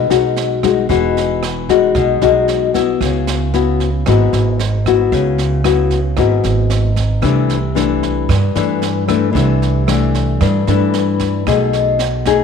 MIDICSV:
0, 0, Header, 1, 4, 480
1, 0, Start_track
1, 0, Tempo, 528634
1, 808, Time_signature, 4, 2, 24, 8
1, 11294, End_track
2, 0, Start_track
2, 0, Title_t, "Nylon-string guitar"
2, 0, Program_c, 0, 24
2, 0, Note_on_c, 0, 47, 44
2, 90, Note_on_c, 0, 56, 60
2, 92, Note_on_c, 0, 63, 57
2, 96, Note_on_c, 0, 66, 69
2, 531, Note_off_c, 0, 56, 0
2, 531, Note_off_c, 0, 63, 0
2, 534, Note_off_c, 0, 66, 0
2, 575, Note_on_c, 0, 56, 64
2, 580, Note_on_c, 0, 63, 54
2, 584, Note_on_c, 0, 66, 63
2, 774, Note_off_c, 0, 56, 0
2, 776, Note_off_c, 0, 63, 0
2, 778, Note_off_c, 0, 66, 0
2, 792, Note_off_c, 0, 47, 0
2, 808, Note_on_c, 0, 52, 48
2, 812, Note_on_c, 0, 56, 49
2, 815, Note_on_c, 0, 63, 46
2, 818, Note_on_c, 0, 66, 59
2, 1287, Note_off_c, 0, 56, 0
2, 1288, Note_off_c, 0, 63, 0
2, 1291, Note_off_c, 0, 66, 0
2, 1537, Note_on_c, 0, 56, 62
2, 1541, Note_on_c, 0, 63, 59
2, 1543, Note_on_c, 0, 66, 73
2, 1745, Note_off_c, 0, 52, 0
2, 1781, Note_on_c, 0, 47, 50
2, 1975, Note_off_c, 0, 56, 0
2, 1976, Note_off_c, 0, 63, 0
2, 1977, Note_off_c, 0, 66, 0
2, 2013, Note_on_c, 0, 56, 72
2, 2016, Note_on_c, 0, 63, 69
2, 2023, Note_on_c, 0, 66, 66
2, 2453, Note_off_c, 0, 56, 0
2, 2455, Note_off_c, 0, 63, 0
2, 2456, Note_off_c, 0, 66, 0
2, 2489, Note_on_c, 0, 59, 59
2, 2494, Note_on_c, 0, 66, 58
2, 2497, Note_on_c, 0, 64, 60
2, 2711, Note_off_c, 0, 47, 0
2, 2737, Note_on_c, 0, 49, 49
2, 3201, Note_off_c, 0, 59, 0
2, 3202, Note_off_c, 0, 64, 0
2, 3208, Note_off_c, 0, 66, 0
2, 3212, Note_on_c, 0, 59, 56
2, 3213, Note_on_c, 0, 64, 50
2, 3219, Note_on_c, 0, 66, 51
2, 3520, Note_off_c, 0, 59, 0
2, 3520, Note_off_c, 0, 64, 0
2, 3523, Note_off_c, 0, 66, 0
2, 3669, Note_off_c, 0, 49, 0
2, 3697, Note_on_c, 0, 44, 55
2, 3701, Note_on_c, 0, 59, 50
2, 3702, Note_on_c, 0, 64, 50
2, 3706, Note_on_c, 0, 66, 59
2, 4171, Note_off_c, 0, 59, 0
2, 4173, Note_off_c, 0, 64, 0
2, 4174, Note_off_c, 0, 66, 0
2, 4422, Note_on_c, 0, 59, 59
2, 4428, Note_on_c, 0, 64, 63
2, 4429, Note_on_c, 0, 66, 68
2, 4630, Note_off_c, 0, 44, 0
2, 4653, Note_on_c, 0, 49, 49
2, 5098, Note_off_c, 0, 59, 0
2, 5099, Note_off_c, 0, 64, 0
2, 5101, Note_off_c, 0, 66, 0
2, 5123, Note_on_c, 0, 59, 54
2, 5126, Note_on_c, 0, 64, 50
2, 5132, Note_on_c, 0, 66, 51
2, 5436, Note_off_c, 0, 59, 0
2, 5436, Note_off_c, 0, 64, 0
2, 5440, Note_off_c, 0, 66, 0
2, 5588, Note_off_c, 0, 49, 0
2, 5603, Note_on_c, 0, 44, 51
2, 5604, Note_on_c, 0, 59, 51
2, 5611, Note_on_c, 0, 64, 52
2, 5617, Note_on_c, 0, 66, 53
2, 6251, Note_off_c, 0, 59, 0
2, 6256, Note_off_c, 0, 64, 0
2, 6257, Note_off_c, 0, 66, 0
2, 6543, Note_off_c, 0, 44, 0
2, 6554, Note_on_c, 0, 48, 48
2, 6554, Note_on_c, 0, 52, 43
2, 6565, Note_on_c, 0, 57, 48
2, 6569, Note_on_c, 0, 62, 53
2, 6871, Note_off_c, 0, 52, 0
2, 6877, Note_off_c, 0, 57, 0
2, 6879, Note_off_c, 0, 62, 0
2, 7037, Note_on_c, 0, 52, 55
2, 7041, Note_on_c, 0, 57, 50
2, 7044, Note_on_c, 0, 62, 54
2, 7499, Note_off_c, 0, 48, 0
2, 7522, Note_off_c, 0, 52, 0
2, 7523, Note_off_c, 0, 57, 0
2, 7525, Note_off_c, 0, 62, 0
2, 7533, Note_on_c, 0, 43, 46
2, 7767, Note_on_c, 0, 52, 61
2, 7773, Note_on_c, 0, 57, 62
2, 7777, Note_on_c, 0, 62, 61
2, 8211, Note_off_c, 0, 52, 0
2, 8213, Note_off_c, 0, 57, 0
2, 8216, Note_off_c, 0, 62, 0
2, 8242, Note_on_c, 0, 52, 61
2, 8248, Note_on_c, 0, 57, 62
2, 8256, Note_on_c, 0, 62, 63
2, 8449, Note_off_c, 0, 52, 0
2, 8450, Note_off_c, 0, 57, 0
2, 8455, Note_off_c, 0, 62, 0
2, 8469, Note_off_c, 0, 43, 0
2, 8469, Note_on_c, 0, 48, 50
2, 8474, Note_on_c, 0, 52, 49
2, 8477, Note_on_c, 0, 57, 54
2, 8481, Note_on_c, 0, 62, 50
2, 8924, Note_off_c, 0, 52, 0
2, 8927, Note_off_c, 0, 57, 0
2, 8927, Note_off_c, 0, 62, 0
2, 8961, Note_on_c, 0, 52, 56
2, 8972, Note_on_c, 0, 57, 59
2, 8976, Note_on_c, 0, 62, 64
2, 9418, Note_off_c, 0, 48, 0
2, 9451, Note_on_c, 0, 43, 49
2, 9648, Note_off_c, 0, 52, 0
2, 9654, Note_off_c, 0, 57, 0
2, 9655, Note_off_c, 0, 62, 0
2, 9699, Note_on_c, 0, 52, 59
2, 9702, Note_on_c, 0, 57, 65
2, 9706, Note_on_c, 0, 62, 70
2, 10388, Note_off_c, 0, 43, 0
2, 10398, Note_off_c, 0, 52, 0
2, 10398, Note_off_c, 0, 57, 0
2, 10398, Note_off_c, 0, 62, 0
2, 10413, Note_on_c, 0, 57, 51
2, 10417, Note_on_c, 0, 47, 52
2, 10419, Note_on_c, 0, 63, 53
2, 10422, Note_on_c, 0, 68, 57
2, 10891, Note_off_c, 0, 57, 0
2, 10893, Note_off_c, 0, 63, 0
2, 10895, Note_off_c, 0, 68, 0
2, 11132, Note_on_c, 0, 57, 56
2, 11140, Note_on_c, 0, 63, 58
2, 11143, Note_on_c, 0, 68, 71
2, 11294, Note_off_c, 0, 47, 0
2, 11294, Note_off_c, 0, 57, 0
2, 11294, Note_off_c, 0, 63, 0
2, 11294, Note_off_c, 0, 68, 0
2, 11294, End_track
3, 0, Start_track
3, 0, Title_t, "Upright bass"
3, 0, Program_c, 1, 32
3, 95, Note_on_c, 1, 35, 72
3, 775, Note_off_c, 1, 35, 0
3, 813, Note_on_c, 1, 28, 85
3, 1734, Note_off_c, 1, 28, 0
3, 1769, Note_on_c, 1, 35, 93
3, 1992, Note_off_c, 1, 35, 0
3, 2012, Note_on_c, 1, 35, 85
3, 2694, Note_off_c, 1, 35, 0
3, 2729, Note_on_c, 1, 37, 96
3, 3653, Note_off_c, 1, 37, 0
3, 3687, Note_on_c, 1, 32, 100
3, 3911, Note_off_c, 1, 32, 0
3, 3929, Note_on_c, 1, 32, 89
3, 4613, Note_off_c, 1, 32, 0
3, 4650, Note_on_c, 1, 37, 96
3, 5574, Note_off_c, 1, 37, 0
3, 5603, Note_on_c, 1, 32, 86
3, 5829, Note_off_c, 1, 32, 0
3, 5851, Note_on_c, 1, 32, 87
3, 6535, Note_off_c, 1, 32, 0
3, 6563, Note_on_c, 1, 36, 93
3, 7491, Note_off_c, 1, 36, 0
3, 7526, Note_on_c, 1, 43, 103
3, 7752, Note_off_c, 1, 43, 0
3, 7766, Note_on_c, 1, 43, 78
3, 8453, Note_off_c, 1, 43, 0
3, 8491, Note_on_c, 1, 36, 95
3, 9416, Note_off_c, 1, 36, 0
3, 9450, Note_on_c, 1, 43, 98
3, 9675, Note_off_c, 1, 43, 0
3, 9692, Note_on_c, 1, 43, 86
3, 10377, Note_off_c, 1, 43, 0
3, 10412, Note_on_c, 1, 35, 98
3, 11294, Note_off_c, 1, 35, 0
3, 11294, End_track
4, 0, Start_track
4, 0, Title_t, "Drums"
4, 93, Note_on_c, 9, 38, 20
4, 184, Note_off_c, 9, 38, 0
4, 331, Note_on_c, 9, 38, 24
4, 422, Note_off_c, 9, 38, 0
4, 572, Note_on_c, 9, 36, 24
4, 575, Note_on_c, 9, 37, 56
4, 575, Note_on_c, 9, 38, 21
4, 663, Note_off_c, 9, 36, 0
4, 665, Note_off_c, 9, 37, 0
4, 665, Note_off_c, 9, 38, 0
4, 811, Note_on_c, 9, 36, 57
4, 813, Note_on_c, 9, 38, 23
4, 902, Note_off_c, 9, 36, 0
4, 904, Note_off_c, 9, 38, 0
4, 1062, Note_on_c, 9, 38, 23
4, 1153, Note_off_c, 9, 38, 0
4, 1295, Note_on_c, 9, 37, 53
4, 1295, Note_on_c, 9, 38, 23
4, 1386, Note_off_c, 9, 37, 0
4, 1386, Note_off_c, 9, 38, 0
4, 1531, Note_on_c, 9, 36, 24
4, 1536, Note_on_c, 9, 38, 23
4, 1622, Note_off_c, 9, 36, 0
4, 1627, Note_off_c, 9, 38, 0
4, 1769, Note_on_c, 9, 36, 56
4, 1770, Note_on_c, 9, 37, 56
4, 1770, Note_on_c, 9, 38, 25
4, 1860, Note_off_c, 9, 36, 0
4, 1860, Note_off_c, 9, 37, 0
4, 1860, Note_off_c, 9, 38, 0
4, 2011, Note_on_c, 9, 38, 19
4, 2101, Note_off_c, 9, 38, 0
4, 2251, Note_on_c, 9, 38, 23
4, 2341, Note_off_c, 9, 38, 0
4, 2489, Note_on_c, 9, 36, 23
4, 2491, Note_on_c, 9, 38, 23
4, 2579, Note_off_c, 9, 36, 0
4, 2582, Note_off_c, 9, 38, 0
4, 2730, Note_on_c, 9, 36, 64
4, 2733, Note_on_c, 9, 37, 52
4, 2733, Note_on_c, 9, 38, 25
4, 2821, Note_off_c, 9, 36, 0
4, 2824, Note_off_c, 9, 37, 0
4, 2824, Note_off_c, 9, 38, 0
4, 2971, Note_on_c, 9, 38, 25
4, 3062, Note_off_c, 9, 38, 0
4, 3210, Note_on_c, 9, 38, 23
4, 3301, Note_off_c, 9, 38, 0
4, 3450, Note_on_c, 9, 36, 23
4, 3451, Note_on_c, 9, 38, 21
4, 3541, Note_off_c, 9, 36, 0
4, 3542, Note_off_c, 9, 38, 0
4, 3687, Note_on_c, 9, 37, 63
4, 3687, Note_on_c, 9, 38, 25
4, 3689, Note_on_c, 9, 36, 54
4, 3778, Note_off_c, 9, 37, 0
4, 3778, Note_off_c, 9, 38, 0
4, 3780, Note_off_c, 9, 36, 0
4, 3929, Note_on_c, 9, 38, 19
4, 4019, Note_off_c, 9, 38, 0
4, 4171, Note_on_c, 9, 38, 24
4, 4262, Note_off_c, 9, 38, 0
4, 4410, Note_on_c, 9, 36, 25
4, 4414, Note_on_c, 9, 37, 53
4, 4414, Note_on_c, 9, 38, 23
4, 4501, Note_off_c, 9, 36, 0
4, 4504, Note_off_c, 9, 37, 0
4, 4504, Note_off_c, 9, 38, 0
4, 4651, Note_on_c, 9, 36, 63
4, 4652, Note_on_c, 9, 38, 22
4, 4741, Note_off_c, 9, 36, 0
4, 4743, Note_off_c, 9, 38, 0
4, 4888, Note_on_c, 9, 38, 21
4, 4978, Note_off_c, 9, 38, 0
4, 5125, Note_on_c, 9, 37, 62
4, 5125, Note_on_c, 9, 38, 27
4, 5216, Note_off_c, 9, 37, 0
4, 5216, Note_off_c, 9, 38, 0
4, 5361, Note_on_c, 9, 38, 23
4, 5366, Note_on_c, 9, 36, 23
4, 5452, Note_off_c, 9, 38, 0
4, 5457, Note_off_c, 9, 36, 0
4, 5599, Note_on_c, 9, 37, 57
4, 5599, Note_on_c, 9, 38, 22
4, 5606, Note_on_c, 9, 36, 58
4, 5690, Note_off_c, 9, 37, 0
4, 5690, Note_off_c, 9, 38, 0
4, 5696, Note_off_c, 9, 36, 0
4, 5844, Note_on_c, 9, 38, 22
4, 5934, Note_off_c, 9, 38, 0
4, 6082, Note_on_c, 9, 38, 24
4, 6173, Note_off_c, 9, 38, 0
4, 6322, Note_on_c, 9, 38, 22
4, 6325, Note_on_c, 9, 36, 23
4, 6413, Note_off_c, 9, 38, 0
4, 6416, Note_off_c, 9, 36, 0
4, 6560, Note_on_c, 9, 37, 59
4, 6560, Note_on_c, 9, 38, 25
4, 6565, Note_on_c, 9, 36, 57
4, 6651, Note_off_c, 9, 37, 0
4, 6651, Note_off_c, 9, 38, 0
4, 6656, Note_off_c, 9, 36, 0
4, 6806, Note_on_c, 9, 38, 24
4, 6897, Note_off_c, 9, 38, 0
4, 7047, Note_on_c, 9, 38, 26
4, 7138, Note_off_c, 9, 38, 0
4, 7288, Note_on_c, 9, 36, 20
4, 7291, Note_on_c, 9, 38, 23
4, 7379, Note_off_c, 9, 36, 0
4, 7382, Note_off_c, 9, 38, 0
4, 7529, Note_on_c, 9, 36, 66
4, 7530, Note_on_c, 9, 37, 58
4, 7530, Note_on_c, 9, 38, 27
4, 7619, Note_off_c, 9, 36, 0
4, 7621, Note_off_c, 9, 37, 0
4, 7621, Note_off_c, 9, 38, 0
4, 7768, Note_on_c, 9, 38, 22
4, 7859, Note_off_c, 9, 38, 0
4, 8007, Note_on_c, 9, 38, 22
4, 8097, Note_off_c, 9, 38, 0
4, 8250, Note_on_c, 9, 36, 23
4, 8250, Note_on_c, 9, 37, 58
4, 8250, Note_on_c, 9, 38, 23
4, 8341, Note_off_c, 9, 36, 0
4, 8341, Note_off_c, 9, 37, 0
4, 8341, Note_off_c, 9, 38, 0
4, 8488, Note_on_c, 9, 38, 22
4, 8490, Note_on_c, 9, 36, 63
4, 8579, Note_off_c, 9, 38, 0
4, 8580, Note_off_c, 9, 36, 0
4, 8736, Note_on_c, 9, 38, 23
4, 8827, Note_off_c, 9, 38, 0
4, 8971, Note_on_c, 9, 37, 60
4, 8971, Note_on_c, 9, 38, 26
4, 9061, Note_off_c, 9, 37, 0
4, 9061, Note_off_c, 9, 38, 0
4, 9211, Note_on_c, 9, 36, 21
4, 9211, Note_on_c, 9, 38, 21
4, 9302, Note_off_c, 9, 36, 0
4, 9302, Note_off_c, 9, 38, 0
4, 9450, Note_on_c, 9, 37, 58
4, 9450, Note_on_c, 9, 38, 24
4, 9452, Note_on_c, 9, 36, 59
4, 9541, Note_off_c, 9, 37, 0
4, 9541, Note_off_c, 9, 38, 0
4, 9543, Note_off_c, 9, 36, 0
4, 9690, Note_on_c, 9, 38, 21
4, 9781, Note_off_c, 9, 38, 0
4, 9930, Note_on_c, 9, 38, 23
4, 10021, Note_off_c, 9, 38, 0
4, 10166, Note_on_c, 9, 38, 24
4, 10172, Note_on_c, 9, 36, 23
4, 10256, Note_off_c, 9, 38, 0
4, 10262, Note_off_c, 9, 36, 0
4, 10413, Note_on_c, 9, 36, 59
4, 10413, Note_on_c, 9, 37, 61
4, 10413, Note_on_c, 9, 38, 23
4, 10504, Note_off_c, 9, 36, 0
4, 10504, Note_off_c, 9, 37, 0
4, 10504, Note_off_c, 9, 38, 0
4, 10652, Note_on_c, 9, 38, 24
4, 10743, Note_off_c, 9, 38, 0
4, 10888, Note_on_c, 9, 38, 27
4, 10979, Note_off_c, 9, 38, 0
4, 11127, Note_on_c, 9, 38, 23
4, 11131, Note_on_c, 9, 36, 24
4, 11217, Note_off_c, 9, 38, 0
4, 11222, Note_off_c, 9, 36, 0
4, 11294, End_track
0, 0, End_of_file